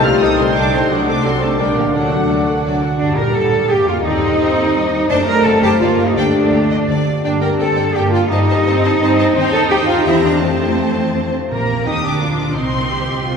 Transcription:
Already playing: C2 C3 G3 D#4 G4 A4 G5
0.05 A3 C4 F4 G4 A4 F6
0.21 C2 G3 D#4 A4 C5 G5 D#6
0.25 G3 D#4
0.39 A3 C4 G4 A4 C6
0.56 C2 G3 D4 D#4 A4 C5 D6
0.72 C3 A3 C4 G4 A4 C6
0.77 D4
0.82 A4
0.87 F#3 F#4 A4 D5
0.91 C2 F#3 A3 D4 F#5
1.07 A3 C4 D4 A4 C5 D6
1.23 C2 F#3 A3 C4 D4 F#4 A4 D5 C6
1.40 A#2 A3 C4 A4 C5 A5
1.46 D4
1.51 A#4
1.55 G3 D4 A#4 D5
1.60 A#1 G3 A#3 D4 G5
1.76 D3 F3 A#3 G4 A#4 F5
1.81 D4
1.91 D2 F#3 D4 F#4 A4 D5
1.95 F#3 A3 D4 D5 F#5
2.11 A3 F#4 A4 F#5
2.29 D2 F#3 D4 F#4 D5
2.47 A3 F#4 A4 F#5
2.64 D2 F#3 D4 F#4 D5
2.82 A3 F#4 A4 F#5
2.99 D2 G2 G3 D4 D5
3.17 A#2 A#3 A#4 A#5
3.34 A2 A4 D5 A5
3.69 G2 A#3 G4 G5
3.87 F2 A#3 F4 F5
4.04 D#2 G2 C4 D#4 D#5
4.21 C4
4.40 C4 C5
4.75 G3 C5
4.92 C4
5.09 F#1 F#2 A3 D4 C5 D5 A5
5.26 C4 A#4 A#5
5.44 F#1 F#4 A4 D5 A5
5.61 F#1 G4 C5 G5 A5
5.79 G1 G2 A#3 F4 G4 D5 F5
5.98 G1 D4 G4 A#4
6.06 D#4 D#5
6.16 D2 D3 A3 D4 D5 G5
6.35 A3
6.52 D2 G4 D5
6.69 D2 D#5
6.88 D2 D3 D5
7.06 D2 F#4 D5
7.24 G2 A#3 D4 D5 G5
7.41 A#3 A#4 D5 G5 A#5
7.59 G2 C4 A4 D5 G5 A5
7.76 A#4 D5 G5
7.95 G2 A#3 G4 D5 G5
8.12 A#3 F4 D5 F5 G5
8.30 G2 G3 D#4 C5 D#5 A5
8.47 C4 C5 A5
8.66 G2 C4 C5 A5
8.84 A4 C5 A5
9.00 G2 C4 C5 A5
9.19 C5 A5
9.35 D#2 D#3 C4 D#4 C5 G5
9.52 C4 A4 A5
9.69 G4 C5 G5
9.86 F4 G4 F5
10.05 E2 E3 C4 E4 C5 E5 A#5
10.23 D4 G4 A#4 D5
10.42 F2 F3 A3 C4 C5 A5
10.61 F4
10.98 F5
11.16 C5
11.34 F4
11.51 A#1 A#2 A#3 A#4 A#5
11.70 A#3
11.86 D#2 D#4 F4 G4 D#6
12.03 D2 D4 D6
12.21 F4
12.39 A#3
12.55 C2 A#2 C4 D#4 C6
12.75 A3
12.91 F4 G4
13.09 D#5
13.26 F4 A4

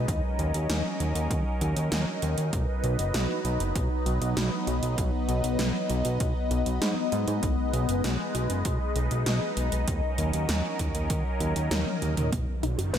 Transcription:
Already playing: D#4 D#5
0.08 D#2 F#3 C#4 A#4, kick, closed hi-hat
0.39 D#2, closed hi-hat
0.54 D#2, closed hi-hat
0.70 D#2, snare, closed hi-hat
1.00 D#2, closed hi-hat
1.15 D#2, closed hi-hat
1.31 D#2, kick, closed hi-hat
1.61 D#2, closed hi-hat
1.77 D#2, closed hi-hat
1.92 D#2, snare, closed hi-hat
2.22 D#2, closed hi-hat
2.38 D#2, closed hi-hat
2.53 B1 F#3 B3 D#4 B4 D#5, kick, closed hi-hat
2.84 B1, closed hi-hat
2.99 F#1, closed hi-hat
3.14 B1, snare, closed hi-hat
3.45 B1, closed hi-hat
3.60 F#1, closed hi-hat
3.75 B1, kick, closed hi-hat
4.06 B1, closed hi-hat
4.21 B1, closed hi-hat
4.37 B1, snare, closed hi-hat
4.67 B1, closed hi-hat
4.83 B1, closed hi-hat
4.98 B1, kick, closed hi-hat
5.28 B1, closed hi-hat
5.44 B1, closed hi-hat
5.59 B1, snare, closed hi-hat
5.90 B1, closed hi-hat
6.05 B1, closed hi-hat
6.20 B1, kick, closed hi-hat
6.51 B1, closed hi-hat
6.66 B1, closed hi-hat
6.82 G#2, snare, closed hi-hat
7.12 G#2, closed hi-hat
7.28 G#2, closed hi-hat
7.43 B1 G#3 D#4, kick, closed hi-hat
7.73 B1, closed hi-hat
7.89 F#1, closed hi-hat
8.04 B1, snare, closed hi-hat
8.35 B1, closed hi-hat
8.50 F#1, closed hi-hat
8.65 B1, kick, closed hi-hat
8.96 B1, closed hi-hat
9.11 B1, closed hi-hat
9.26 B1, snare, closed hi-hat
9.57 B1, closed hi-hat
9.72 B1, closed hi-hat
9.88 D#2 F#3 C#4 A#4, kick, closed hi-hat
10.18 D#2, closed hi-hat
10.33 D#2, closed hi-hat
10.49 D#2, snare, closed hi-hat
10.79 D#2, kick, closed hi-hat
10.95 D#2, closed hi-hat
11.10 D#2, kick, closed hi-hat
11.40 D#2, closed hi-hat
11.56 D#2, closed hi-hat
11.71 D#2, snare, closed hi-hat, high tom
11.87 high tom
12.02 D#2, closed hi-hat
12.17 D#2, closed hi-hat, mid tom
12.32 B1 D#3 F#3 B3 F#4 B4, kick, closed hi-hat, riser
12.63 B1 D#4, closed hi-hat
12.78 F#1 F#4, closed hi-hat
12.94 B1 B4, snare, closed hi-hat

